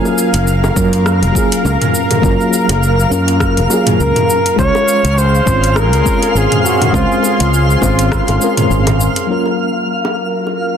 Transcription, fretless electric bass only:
0.34 0.69 F#1 loud
0.76 1.24 F#2 medium
1.22 1.31 F#1 medium
1.65 1.75 C#2 medium
2.23 2.34 F#1 medium
2.69 3.04 F#1 medium
3.11 3.59 F#2 medium
3.58 3.66 F#1 medium
4.00 4.11 C#2 medium
4.59 4.69 C#2 medium
5.04 5.39 C#2 loud
5.47 5.92 G#1 medium
5.92 6.01 C#2 medium
6.35 6.46 G#1 medium
6.94 7.05 C#2 loud
7.40 7.75 C#2 loud
7.82 8.19 G#1 medium
8.28 8.37 G#1 loud
8.70 9.07 G#1 medium

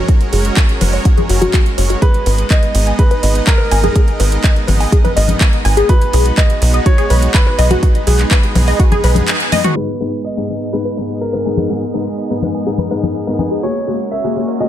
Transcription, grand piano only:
2.02 2.46 B4 medium
2.50 2.94 D#5 medium
2.99 3.43 B4 medium
3.47 5.80 A#4 medium
5.89 6.33 B4 medium
6.38 6.81 D#5 medium
6.86 7.30 C#5 medium
7.34 9.67 B4 medium
9.76 10.20 B4 medium
10.24 10.68 D#5 medium
10.73 11.16 B4 medium
11.21 13.54 A#4 medium
13.63 14.07 C#5 medium
14.11 14.55 E5 medium
14.60 14.69 D#5 medium

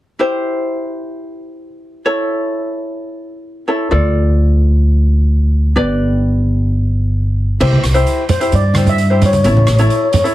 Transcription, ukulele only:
0.19 2.02 E4 medium
0.19 2.02 G4 medium
0.19 2.02 C5 medium
2.06 3.65 E4 medium
2.06 3.65 A4 soft
2.06 3.65 C#5 medium
3.68 3.91 E4 soft
3.68 3.90 A4 soft
3.68 3.91 C#5 medium
3.91 5.73 F4 medium
3.91 5.73 A4 soft
3.91 5.73 D5 medium
5.76 7.57 G4 medium
5.76 7.57 B4 medium
5.76 7.58 D5 medium
7.60 7.82 E4 medium
7.60 7.82 G4 medium
7.60 7.82 C5 medium
7.94 8.23 E4 medium
7.94 8.23 G4 medium
7.94 8.23 C5 medium
8.40 8.62 E4 medium
8.40 8.62 G4 soft
8.40 8.62 C5 medium
8.76 8.97 E4 medium
8.76 8.97 G4 medium
8.76 8.97 C5 medium
9.10 9.32 E4 medium
9.10 9.32 G4 soft
9.10 9.32 C5 medium
9.45 9.66 E4 medium
9.45 9.66 A4 medium
9.45 9.67 C#5 medium
9.79 10.07 E4 medium
9.79 10.07 A4 medium
9.79 10.08 C#5 medium
10.24 10.35 E4 medium
10.24 10.35 A4 medium
10.24 10.35 C#5 medium

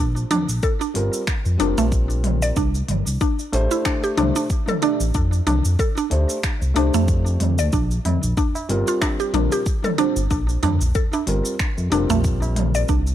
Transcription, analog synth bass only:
0.00 0.25 A#1 loud
0.31 0.45 F2 medium
0.49 0.60 A#1 medium
0.95 1.10 G1 medium
1.46 1.57 F2 medium
1.60 1.74 F1 medium
1.78 2.52 A#1 medium
2.56 2.83 C2 loud
2.89 3.03 G1 medium
3.07 3.18 C2 medium
3.53 3.68 A1 medium
4.18 4.32 C2 loud
5.00 5.12 A1 medium
5.15 5.41 F2 loud
5.47 5.61 C2 medium
5.65 5.76 F2 medium
6.12 6.26 D2 medium
6.62 6.73 C2 medium
6.76 6.90 C2 medium
6.94 7.26 F2 medium
7.26 7.38 F2 medium
7.41 7.60 F2 medium
7.58 7.70 D2 medium
7.73 7.99 A#1 loud
8.05 8.19 F2 medium
8.23 8.34 A#1 medium
8.69 8.84 G1 medium
9.34 9.48 A#1 loud
10.16 10.28 G1 medium
10.31 10.57 A#1 medium
10.63 10.77 F2 medium
10.81 10.92 A#1 medium
11.27 11.42 G1 medium
11.78 11.89 F2 loud
11.92 12.06 F1 medium
12.10 12.84 A#1 medium
12.89 13.15 C2 loud

